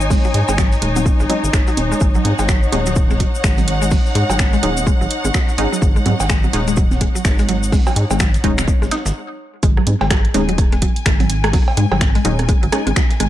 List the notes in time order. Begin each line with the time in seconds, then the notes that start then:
Already playing: G#1 D#4 C#5 G#5
0.01 cabasa
0.10 G#3, kick, open hi-hat, high conga, cabasa
0.24 F#3, cabasa
0.34 G#2, closed hi-hat, shaker
0.49 G#1 G#3, cowbell, high conga, cabasa
0.58 F#3, finger snap, kick, snare, cabasa, shaker
0.72 closed hi-hat, cabasa
0.82 D#1 G#3, closed hi-hat, shaker
0.96 F#3, closed hi-hat, high conga, cabasa
1.06 kick, cabasa, shaker
1.20 G#1 G#3, snare, cabasa
1.29 F#3 G#3 C#4 D#4, closed hi-hat, high conga, shaker
1.44 G#1, cabasa
1.53 G#1 G#3, finger snap, kick, snare, cabasa, shaker
1.67 F#3, closed hi-hat, cabasa
1.77 D#1, closed hi-hat, high conga, shaker
1.91 G#3, cabasa
2.00 G#1 G#3, kick, cabasa, shaker
2.15 F#3, cabasa
2.21 G#2 F#5, closed hi-hat, high conga, shaker
2.39 G#1 G#3, snare, cowbell, cabasa
2.49 F#3, finger snap, kick, snare, cabasa, shaker
2.63 cabasa
2.72 D#1 G#3 C#4 D#4, snare, closed hi-hat, high conga, shaker
2.86 F#3, closed hi-hat, cabasa
2.96 kick, cabasa, shaker
3.10 G#3, snare, high conga, cabasa
3.20 F#3, kick, closed hi-hat, shaker
3.35 cabasa
3.44 G#1 G#3, finger snap, kick, snare, cabasa, shaker
3.58 F#3, closed hi-hat, high conga, cabasa
3.68 snare, closed hi-hat, shaker
3.82 G#3, cabasa
3.91 F#3, kick, open hi-hat, high conga, cabasa
4.06 cabasa
4.15 G#2 G#3, closed hi-hat, shaker
4.30 G#1 F#3, cowbell, cabasa
4.39 finger snap, kick, snare, high conga, cabasa, shaker
4.53 G#3, closed hi-hat, cabasa
4.63 D#1 F#3 G#3 C#4 D#4, closed hi-hat, shaker
4.77 closed hi-hat, high conga, cabasa
4.87 G#3, kick, cabasa, shaker
5.01 G#1 F#3, cabasa
5.11 closed hi-hat, shaker
5.25 G#1 G#3, high conga, cabasa
5.34 F#3, finger snap, kick, snare, cabasa, shaker
5.49 snare, cabasa
5.58 G#1 G#3 C#4 D#4, closed hi-hat, high conga, shaker
5.72 F#3, cabasa
5.82 G#1, kick, cabasa, shaker
5.96 G#3, cabasa
6.06 G#2 F#3, closed hi-hat, high conga, shaker
6.20 G#1, snare, cowbell, cabasa
6.29 G#3, finger snap, kick, snare, cabasa, shaker
6.43 F#3, high conga, cabasa
6.53 D#1 G#3 C#4 D#4, snare, closed hi-hat, shaker
6.68 G#3, closed hi-hat, cabasa
6.76 F#3, kick, cabasa, shaker
6.91 snare, high conga, cabasa
7.01 G#3, kick, closed hi-hat, shaker
7.15 F#3, cabasa
7.25 G#1, finger snap, kick, snare, high conga, cabasa, shaker
7.39 G#3, closed hi-hat, cabasa
7.49 F#3, snare, closed hi-hat, shaker
7.63 cabasa
7.72 G#3, kick, open hi-hat, high conga, cabasa
7.87 F#3, cowbell, cabasa
7.96 G#2, closed hi-hat, shaker
8.11 G#1 G#3, cowbell, high conga, cabasa
8.19 F#3, finger snap, kick, snare, cabasa, shaker
8.34 closed hi-hat, cabasa
8.44 D#1 G#3 C#4 D#4, kick, closed hi-hat, shaker
8.58 F#3, finger snap, closed hi-hat, high conga, cabasa
8.68 kick, cabasa, shaker
8.82 G#1 G#3, snare, cabasa
8.91 D#4, snare, closed hi-hat, high conga, shaker
9.06 G#1, snare, cabasa, shaker
9.63 G#1 G#3, kick, closed hi-hat, shaker
9.77 F#3, cross-stick
9.87 G#2, closed hi-hat, high conga, shaker
10.01 G#1 G#3, snare, cowbell
10.11 F#3, finger snap, kick, cross-stick, snare, closed hi-hat, shaker
10.25 closed hi-hat
10.33 D#1 G#3 C#4 D#4 G#5, snare, closed hi-hat, high conga, shaker
10.49 F#3, closed hi-hat
10.58 kick, cross-stick, closed hi-hat, shaker
10.72 G#3, snare, closed hi-hat, high conga
10.82 F#3, kick, closed hi-hat, shaker
10.96 closed hi-hat
11.06 G#1 G#3, finger snap, kick, cross-stick, snare, closed hi-hat, shaker
11.20 F#3, closed hi-hat, high conga
11.30 snare, closed hi-hat, shaker
11.44 G#3, cross-stick, closed hi-hat
11.53 F#3, kick, closed hi-hat, open hi-hat, high conga
11.68 cowbell
11.77 G#2 G#3, closed hi-hat, shaker
11.91 G#1 F#3, cross-stick, cowbell
12.01 finger snap, kick, snare, closed hi-hat, high conga, shaker
12.15 G#3, closed hi-hat
12.25 D#1 F#3 G#3 C#4 D#4, closed hi-hat, shaker
12.39 cross-stick, closed hi-hat, high conga
12.49 G#3, kick, closed hi-hat, shaker
12.63 G#1 F#3, closed hi-hat
12.72 G#3 C#4 D#4, cross-stick, closed hi-hat, shaker
12.87 G#1 G#3, closed hi-hat, high conga
12.96 F#3, finger snap, kick, snare, closed hi-hat, shaker
13.11 snare, closed hi-hat
13.20 G#1 G#3, cross-stick, closed hi-hat, high conga, shaker